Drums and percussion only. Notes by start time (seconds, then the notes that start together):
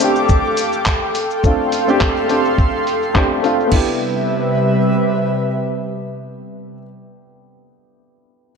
0.00 open hi-hat, shaker
0.16 shaker
0.29 kick, shaker
0.57 open hi-hat, shaker
0.73 shaker
0.86 kick, clap, shaker
1.15 open hi-hat, shaker
1.31 shaker
1.44 kick, shaker
1.72 open hi-hat, shaker
1.88 shaker
2.01 kick, clap, shaker
2.17 shaker
2.29 open hi-hat, shaker
2.45 shaker
2.58 kick, shaker
2.87 open hi-hat, shaker
3.03 shaker
3.15 kick, clap, shaker
3.44 open hi-hat, shaker
3.60 shaker
3.72 kick, crash